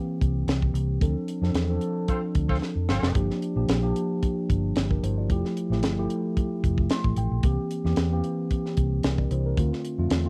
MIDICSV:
0, 0, Header, 1, 5, 480
1, 0, Start_track
1, 0, Tempo, 535236
1, 908, Time_signature, 4, 2, 24, 8
1, 9230, End_track
2, 0, Start_track
2, 0, Title_t, "Horn section"
2, 0, Program_c, 0, 61
2, 1871, Note_on_c, 0, 60, 68
2, 1871, Note_on_c, 0, 72, 73
2, 1872, Note_on_c, 0, 65, 63
2, 1872, Note_on_c, 0, 69, 68
2, 1980, Note_off_c, 0, 60, 0
2, 1980, Note_off_c, 0, 72, 0
2, 1981, Note_off_c, 0, 65, 0
2, 1981, Note_off_c, 0, 69, 0
2, 2235, Note_on_c, 0, 60, 74
2, 2235, Note_on_c, 0, 72, 80
2, 2236, Note_on_c, 0, 65, 81
2, 2240, Note_on_c, 0, 69, 82
2, 2307, Note_off_c, 0, 60, 0
2, 2307, Note_off_c, 0, 72, 0
2, 2308, Note_off_c, 0, 65, 0
2, 2310, Note_off_c, 0, 69, 0
2, 2592, Note_on_c, 0, 65, 81
2, 2593, Note_on_c, 0, 60, 84
2, 2593, Note_on_c, 0, 72, 91
2, 2594, Note_on_c, 0, 69, 81
2, 2795, Note_off_c, 0, 65, 0
2, 2796, Note_off_c, 0, 60, 0
2, 2796, Note_off_c, 0, 69, 0
2, 2796, Note_off_c, 0, 72, 0
2, 9230, End_track
3, 0, Start_track
3, 0, Title_t, "Tine electric piano"
3, 0, Program_c, 1, 4
3, 0, Control_c, 1, 64, 127
3, 0, Note_on_c, 1, 52, 77
3, 0, Note_on_c, 1, 58, 73
3, 0, Note_on_c, 1, 60, 75
3, 0, Note_on_c, 1, 67, 85
3, 349, Note_off_c, 1, 52, 0
3, 350, Note_off_c, 1, 58, 0
3, 353, Note_off_c, 1, 60, 0
3, 356, Note_off_c, 1, 67, 0
3, 903, Note_on_c, 1, 53, 69
3, 908, Note_on_c, 1, 60, 67
3, 910, Note_on_c, 1, 62, 65
3, 916, Note_on_c, 1, 69, 77
3, 920, Control_c, 1, 64, 0
3, 1061, Control_c, 1, 64, 127
3, 1194, Note_off_c, 1, 53, 0
3, 1197, Note_off_c, 1, 60, 0
3, 1197, Note_off_c, 1, 62, 0
3, 1200, Note_off_c, 1, 69, 0
3, 1278, Note_on_c, 1, 60, 67
3, 1279, Note_on_c, 1, 53, 78
3, 1282, Note_on_c, 1, 62, 64
3, 1287, Note_on_c, 1, 69, 78
3, 1464, Note_off_c, 1, 53, 0
3, 1464, Note_off_c, 1, 60, 0
3, 1466, Note_off_c, 1, 62, 0
3, 1469, Note_off_c, 1, 69, 0
3, 1518, Note_on_c, 1, 53, 72
3, 1522, Note_on_c, 1, 60, 69
3, 1526, Note_on_c, 1, 62, 70
3, 1527, Note_on_c, 1, 69, 85
3, 2274, Note_off_c, 1, 53, 0
3, 2275, Note_off_c, 1, 60, 0
3, 2278, Note_off_c, 1, 62, 0
3, 2278, Note_off_c, 1, 69, 0
3, 2825, Note_on_c, 1, 53, 70
3, 2825, Note_on_c, 1, 58, 67
3, 2831, Note_on_c, 1, 62, 71
3, 2833, Note_on_c, 1, 67, 87
3, 2843, Control_c, 1, 64, 0
3, 2982, Control_c, 1, 64, 127
3, 3115, Note_off_c, 1, 53, 0
3, 3115, Note_off_c, 1, 58, 0
3, 3118, Note_off_c, 1, 62, 0
3, 3119, Note_off_c, 1, 67, 0
3, 3190, Note_on_c, 1, 53, 73
3, 3197, Note_on_c, 1, 58, 66
3, 3197, Note_on_c, 1, 62, 61
3, 3200, Note_on_c, 1, 67, 76
3, 3380, Note_off_c, 1, 53, 0
3, 3384, Note_off_c, 1, 58, 0
3, 3384, Note_off_c, 1, 62, 0
3, 3385, Note_off_c, 1, 67, 0
3, 3424, Note_on_c, 1, 53, 70
3, 3429, Note_on_c, 1, 58, 77
3, 3435, Note_on_c, 1, 67, 79
3, 3437, Note_on_c, 1, 62, 74
3, 4186, Note_off_c, 1, 53, 0
3, 4189, Note_off_c, 1, 58, 0
3, 4192, Note_off_c, 1, 67, 0
3, 4193, Note_off_c, 1, 62, 0
3, 4266, Note_on_c, 1, 67, 52
3, 4271, Note_on_c, 1, 58, 44
3, 4391, Note_off_c, 1, 67, 0
3, 4394, Note_off_c, 1, 58, 0
3, 4397, Note_on_c, 1, 70, 59
3, 4406, Note_on_c, 1, 62, 52
3, 4503, Note_off_c, 1, 70, 0
3, 4508, Note_off_c, 1, 62, 0
3, 4516, Note_on_c, 1, 72, 65
3, 4521, Note_on_c, 1, 64, 45
3, 4636, Note_off_c, 1, 72, 0
3, 4639, Note_off_c, 1, 64, 0
3, 4645, Note_on_c, 1, 74, 52
3, 4652, Note_on_c, 1, 65, 49
3, 4753, Note_on_c, 1, 53, 76
3, 4757, Note_on_c, 1, 57, 74
3, 4762, Control_c, 1, 64, 0
3, 4762, Note_on_c, 1, 64, 62
3, 4770, Note_on_c, 1, 67, 80
3, 4871, Note_off_c, 1, 74, 0
3, 4874, Note_off_c, 1, 65, 0
3, 4928, Control_c, 1, 64, 127
3, 5039, Note_off_c, 1, 53, 0
3, 5041, Note_off_c, 1, 57, 0
3, 5044, Note_off_c, 1, 64, 0
3, 5047, Note_off_c, 1, 67, 0
3, 5121, Note_on_c, 1, 53, 73
3, 5122, Note_on_c, 1, 57, 74
3, 5130, Note_on_c, 1, 64, 66
3, 5130, Note_on_c, 1, 67, 75
3, 5305, Note_off_c, 1, 53, 0
3, 5306, Note_off_c, 1, 57, 0
3, 5310, Note_off_c, 1, 64, 0
3, 5310, Note_off_c, 1, 67, 0
3, 5366, Note_on_c, 1, 53, 78
3, 5370, Note_on_c, 1, 57, 75
3, 5373, Note_on_c, 1, 64, 75
3, 5373, Note_on_c, 1, 67, 89
3, 6117, Note_off_c, 1, 53, 0
3, 6119, Note_off_c, 1, 57, 0
3, 6120, Note_off_c, 1, 64, 0
3, 6120, Note_off_c, 1, 67, 0
3, 6195, Note_on_c, 1, 84, 67
3, 6416, Note_off_c, 1, 84, 0
3, 6436, Note_on_c, 1, 79, 59
3, 6656, Note_off_c, 1, 79, 0
3, 6670, Note_on_c, 1, 52, 77
3, 6675, Note_on_c, 1, 60, 63
3, 6676, Note_on_c, 1, 58, 74
3, 6680, Note_on_c, 1, 67, 91
3, 6681, Control_c, 1, 64, 0
3, 6816, Control_c, 1, 64, 127
3, 6957, Note_off_c, 1, 52, 0
3, 6959, Note_off_c, 1, 60, 0
3, 6960, Note_off_c, 1, 58, 0
3, 6962, Note_off_c, 1, 67, 0
3, 7040, Note_on_c, 1, 52, 81
3, 7044, Note_on_c, 1, 58, 64
3, 7046, Note_on_c, 1, 60, 73
3, 7048, Note_on_c, 1, 67, 85
3, 7224, Note_off_c, 1, 52, 0
3, 7226, Note_off_c, 1, 58, 0
3, 7227, Note_off_c, 1, 60, 0
3, 7228, Note_off_c, 1, 67, 0
3, 7283, Note_on_c, 1, 52, 75
3, 7287, Note_on_c, 1, 58, 79
3, 7288, Note_on_c, 1, 60, 67
3, 7293, Note_on_c, 1, 67, 87
3, 8034, Note_off_c, 1, 52, 0
3, 8036, Note_off_c, 1, 58, 0
3, 8037, Note_off_c, 1, 60, 0
3, 8039, Note_off_c, 1, 67, 0
3, 8108, Note_on_c, 1, 70, 49
3, 8114, Note_on_c, 1, 62, 43
3, 8231, Note_off_c, 1, 70, 0
3, 8234, Note_off_c, 1, 62, 0
3, 8237, Note_on_c, 1, 74, 60
3, 8342, Note_off_c, 1, 74, 0
3, 8353, Note_on_c, 1, 72, 57
3, 8357, Note_on_c, 1, 64, 45
3, 8473, Note_off_c, 1, 72, 0
3, 8475, Note_off_c, 1, 64, 0
3, 8482, Note_on_c, 1, 70, 59
3, 8487, Note_on_c, 1, 62, 43
3, 8592, Note_on_c, 1, 50, 76
3, 8592, Note_on_c, 1, 57, 69
3, 8599, Control_c, 1, 64, 0
3, 8599, Note_on_c, 1, 60, 66
3, 8602, Note_on_c, 1, 65, 88
3, 8707, Note_off_c, 1, 70, 0
3, 8710, Note_off_c, 1, 62, 0
3, 8746, Control_c, 1, 64, 127
3, 8877, Note_off_c, 1, 50, 0
3, 8877, Note_off_c, 1, 57, 0
3, 8880, Note_off_c, 1, 60, 0
3, 8882, Note_off_c, 1, 65, 0
3, 8954, Note_on_c, 1, 50, 82
3, 8954, Note_on_c, 1, 57, 73
3, 8961, Note_on_c, 1, 60, 65
3, 8963, Note_on_c, 1, 65, 76
3, 9140, Note_off_c, 1, 50, 0
3, 9140, Note_off_c, 1, 57, 0
3, 9144, Note_off_c, 1, 60, 0
3, 9145, Note_off_c, 1, 65, 0
3, 9193, Note_on_c, 1, 50, 76
3, 9195, Note_on_c, 1, 57, 73
3, 9200, Note_on_c, 1, 60, 68
3, 9202, Note_on_c, 1, 65, 86
3, 9230, Note_off_c, 1, 50, 0
3, 9230, Note_off_c, 1, 57, 0
3, 9230, Note_off_c, 1, 60, 0
3, 9230, Note_off_c, 1, 65, 0
3, 9230, End_track
4, 0, Start_track
4, 0, Title_t, "Fingered electric bass"
4, 0, Program_c, 2, 33
4, 192, Note_on_c, 2, 36, 72
4, 394, Note_off_c, 2, 36, 0
4, 426, Note_on_c, 2, 36, 92
4, 631, Note_off_c, 2, 36, 0
4, 660, Note_on_c, 2, 36, 93
4, 867, Note_off_c, 2, 36, 0
4, 909, Note_on_c, 2, 38, 101
4, 1019, Note_off_c, 2, 38, 0
4, 1270, Note_on_c, 2, 41, 78
4, 1367, Note_off_c, 2, 41, 0
4, 1383, Note_on_c, 2, 40, 77
4, 1589, Note_off_c, 2, 40, 0
4, 2110, Note_on_c, 2, 38, 77
4, 2314, Note_off_c, 2, 38, 0
4, 2472, Note_on_c, 2, 41, 71
4, 2569, Note_off_c, 2, 41, 0
4, 2586, Note_on_c, 2, 31, 83
4, 2698, Note_off_c, 2, 31, 0
4, 2711, Note_on_c, 2, 29, 66
4, 2809, Note_off_c, 2, 29, 0
4, 2829, Note_on_c, 2, 31, 83
4, 2939, Note_off_c, 2, 31, 0
4, 3192, Note_on_c, 2, 34, 84
4, 3289, Note_off_c, 2, 34, 0
4, 3302, Note_on_c, 2, 34, 77
4, 3509, Note_off_c, 2, 34, 0
4, 4031, Note_on_c, 2, 31, 70
4, 4234, Note_off_c, 2, 31, 0
4, 4273, Note_on_c, 2, 31, 77
4, 4476, Note_off_c, 2, 31, 0
4, 4510, Note_on_c, 2, 31, 88
4, 4750, Note_off_c, 2, 31, 0
4, 4750, Note_on_c, 2, 29, 89
4, 4860, Note_off_c, 2, 29, 0
4, 5110, Note_on_c, 2, 33, 74
4, 5222, Note_off_c, 2, 33, 0
4, 5222, Note_on_c, 2, 31, 83
4, 5429, Note_off_c, 2, 31, 0
4, 5951, Note_on_c, 2, 29, 79
4, 6153, Note_off_c, 2, 29, 0
4, 6318, Note_on_c, 2, 33, 73
4, 6412, Note_off_c, 2, 33, 0
4, 6427, Note_on_c, 2, 33, 87
4, 6538, Note_off_c, 2, 33, 0
4, 6558, Note_on_c, 2, 34, 78
4, 6651, Note_off_c, 2, 34, 0
4, 6668, Note_on_c, 2, 36, 94
4, 6778, Note_off_c, 2, 36, 0
4, 7036, Note_on_c, 2, 40, 85
4, 7130, Note_off_c, 2, 40, 0
4, 7149, Note_on_c, 2, 40, 71
4, 7352, Note_off_c, 2, 40, 0
4, 7869, Note_on_c, 2, 36, 79
4, 8072, Note_off_c, 2, 36, 0
4, 8105, Note_on_c, 2, 36, 86
4, 8310, Note_off_c, 2, 36, 0
4, 8345, Note_on_c, 2, 36, 87
4, 8549, Note_off_c, 2, 36, 0
4, 8586, Note_on_c, 2, 38, 93
4, 8696, Note_off_c, 2, 38, 0
4, 8953, Note_on_c, 2, 41, 76
4, 9048, Note_off_c, 2, 41, 0
4, 9065, Note_on_c, 2, 40, 86
4, 9230, Note_off_c, 2, 40, 0
4, 9230, End_track
5, 0, Start_track
5, 0, Title_t, "Drums"
5, 191, Note_on_c, 9, 36, 76
5, 196, Note_on_c, 9, 42, 58
5, 281, Note_off_c, 9, 36, 0
5, 286, Note_off_c, 9, 42, 0
5, 430, Note_on_c, 9, 42, 65
5, 440, Note_on_c, 9, 38, 95
5, 520, Note_off_c, 9, 42, 0
5, 529, Note_off_c, 9, 38, 0
5, 559, Note_on_c, 9, 36, 72
5, 649, Note_off_c, 9, 36, 0
5, 674, Note_on_c, 9, 42, 61
5, 763, Note_off_c, 9, 42, 0
5, 909, Note_on_c, 9, 36, 103
5, 909, Note_on_c, 9, 42, 78
5, 998, Note_off_c, 9, 36, 0
5, 999, Note_off_c, 9, 42, 0
5, 1150, Note_on_c, 9, 42, 61
5, 1240, Note_off_c, 9, 42, 0
5, 1289, Note_on_c, 9, 38, 33
5, 1379, Note_off_c, 9, 38, 0
5, 1387, Note_on_c, 9, 42, 77
5, 1395, Note_on_c, 9, 38, 108
5, 1476, Note_off_c, 9, 42, 0
5, 1485, Note_off_c, 9, 38, 0
5, 1626, Note_on_c, 9, 42, 55
5, 1716, Note_off_c, 9, 42, 0
5, 1868, Note_on_c, 9, 42, 67
5, 1870, Note_on_c, 9, 36, 69
5, 1957, Note_off_c, 9, 42, 0
5, 1960, Note_off_c, 9, 36, 0
5, 2106, Note_on_c, 9, 42, 71
5, 2110, Note_on_c, 9, 36, 77
5, 2196, Note_off_c, 9, 42, 0
5, 2200, Note_off_c, 9, 36, 0
5, 2236, Note_on_c, 9, 36, 75
5, 2326, Note_off_c, 9, 36, 0
5, 2353, Note_on_c, 9, 38, 51
5, 2442, Note_off_c, 9, 38, 0
5, 2590, Note_on_c, 9, 38, 80
5, 2680, Note_off_c, 9, 38, 0
5, 2721, Note_on_c, 9, 38, 87
5, 2810, Note_off_c, 9, 38, 0
5, 2826, Note_on_c, 9, 42, 82
5, 2827, Note_on_c, 9, 36, 96
5, 2915, Note_off_c, 9, 42, 0
5, 2917, Note_off_c, 9, 36, 0
5, 2964, Note_on_c, 9, 38, 30
5, 3054, Note_off_c, 9, 38, 0
5, 3070, Note_on_c, 9, 42, 59
5, 3159, Note_off_c, 9, 42, 0
5, 3306, Note_on_c, 9, 42, 83
5, 3314, Note_on_c, 9, 38, 115
5, 3395, Note_off_c, 9, 42, 0
5, 3404, Note_off_c, 9, 38, 0
5, 3552, Note_on_c, 9, 42, 58
5, 3641, Note_off_c, 9, 42, 0
5, 3790, Note_on_c, 9, 42, 72
5, 3792, Note_on_c, 9, 36, 72
5, 3880, Note_off_c, 9, 42, 0
5, 3881, Note_off_c, 9, 36, 0
5, 4033, Note_on_c, 9, 36, 74
5, 4033, Note_on_c, 9, 42, 68
5, 4122, Note_off_c, 9, 36, 0
5, 4123, Note_off_c, 9, 42, 0
5, 4266, Note_on_c, 9, 42, 65
5, 4275, Note_on_c, 9, 38, 98
5, 4355, Note_off_c, 9, 42, 0
5, 4365, Note_off_c, 9, 38, 0
5, 4400, Note_on_c, 9, 36, 68
5, 4490, Note_off_c, 9, 36, 0
5, 4517, Note_on_c, 9, 42, 63
5, 4606, Note_off_c, 9, 42, 0
5, 4751, Note_on_c, 9, 36, 93
5, 4752, Note_on_c, 9, 42, 79
5, 4841, Note_off_c, 9, 36, 0
5, 4842, Note_off_c, 9, 42, 0
5, 4888, Note_on_c, 9, 38, 28
5, 4978, Note_off_c, 9, 38, 0
5, 4995, Note_on_c, 9, 42, 59
5, 5085, Note_off_c, 9, 42, 0
5, 5133, Note_on_c, 9, 38, 28
5, 5222, Note_off_c, 9, 38, 0
5, 5227, Note_on_c, 9, 42, 87
5, 5235, Note_on_c, 9, 38, 104
5, 5316, Note_off_c, 9, 42, 0
5, 5325, Note_off_c, 9, 38, 0
5, 5472, Note_on_c, 9, 42, 56
5, 5561, Note_off_c, 9, 42, 0
5, 5712, Note_on_c, 9, 36, 76
5, 5712, Note_on_c, 9, 42, 66
5, 5801, Note_off_c, 9, 36, 0
5, 5801, Note_off_c, 9, 42, 0
5, 5953, Note_on_c, 9, 36, 83
5, 5954, Note_on_c, 9, 42, 67
5, 6042, Note_off_c, 9, 36, 0
5, 6044, Note_off_c, 9, 42, 0
5, 6079, Note_on_c, 9, 36, 80
5, 6168, Note_off_c, 9, 36, 0
5, 6185, Note_on_c, 9, 42, 66
5, 6194, Note_on_c, 9, 38, 102
5, 6274, Note_off_c, 9, 42, 0
5, 6284, Note_off_c, 9, 38, 0
5, 6318, Note_on_c, 9, 36, 71
5, 6407, Note_off_c, 9, 36, 0
5, 6426, Note_on_c, 9, 42, 62
5, 6515, Note_off_c, 9, 42, 0
5, 6664, Note_on_c, 9, 42, 83
5, 6668, Note_on_c, 9, 36, 101
5, 6754, Note_off_c, 9, 42, 0
5, 6758, Note_off_c, 9, 36, 0
5, 6911, Note_on_c, 9, 42, 59
5, 7001, Note_off_c, 9, 42, 0
5, 7047, Note_on_c, 9, 38, 30
5, 7136, Note_off_c, 9, 38, 0
5, 7141, Note_on_c, 9, 42, 78
5, 7149, Note_on_c, 9, 38, 106
5, 7230, Note_off_c, 9, 42, 0
5, 7239, Note_off_c, 9, 38, 0
5, 7387, Note_on_c, 9, 42, 58
5, 7477, Note_off_c, 9, 42, 0
5, 7628, Note_on_c, 9, 42, 69
5, 7629, Note_on_c, 9, 36, 73
5, 7718, Note_off_c, 9, 42, 0
5, 7719, Note_off_c, 9, 36, 0
5, 7765, Note_on_c, 9, 38, 33
5, 7854, Note_off_c, 9, 38, 0
5, 7864, Note_on_c, 9, 42, 69
5, 7869, Note_on_c, 9, 36, 71
5, 7954, Note_off_c, 9, 42, 0
5, 7959, Note_off_c, 9, 36, 0
5, 8102, Note_on_c, 9, 42, 71
5, 8111, Note_on_c, 9, 38, 110
5, 8191, Note_off_c, 9, 42, 0
5, 8201, Note_off_c, 9, 38, 0
5, 8235, Note_on_c, 9, 36, 75
5, 8325, Note_off_c, 9, 36, 0
5, 8349, Note_on_c, 9, 42, 59
5, 8438, Note_off_c, 9, 42, 0
5, 8586, Note_on_c, 9, 42, 85
5, 8587, Note_on_c, 9, 36, 95
5, 8676, Note_off_c, 9, 42, 0
5, 8677, Note_off_c, 9, 36, 0
5, 8728, Note_on_c, 9, 38, 29
5, 8818, Note_off_c, 9, 38, 0
5, 8831, Note_on_c, 9, 42, 64
5, 8921, Note_off_c, 9, 42, 0
5, 9062, Note_on_c, 9, 42, 88
5, 9071, Note_on_c, 9, 38, 104
5, 9152, Note_off_c, 9, 42, 0
5, 9160, Note_off_c, 9, 38, 0
5, 9230, End_track
0, 0, End_of_file